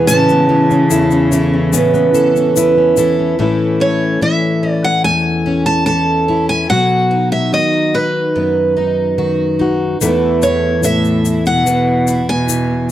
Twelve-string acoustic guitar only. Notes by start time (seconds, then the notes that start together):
Already playing: B3 E4 G#4
0.07 E3
0.49 C#4
0.90 A4
1.32 C#4
1.73 B3
2.14 A4
2.56 B3
2.98 A4
3.39 E3 A4
3.80 C#4
4.21 A4
4.63 C#4
5.05 A3
5.46 C#4
5.86 A4
6.28 C#4
6.69 F#3 F#4
7.11 D#4
7.52 F#4
7.94 D#4
8.35 B3
8.77 D#4
9.18 F#4
9.59 D#4
10.01 E3 A4
10.42 E4
10.83 A4
11.25 E4
11.66 E3
12.08 E4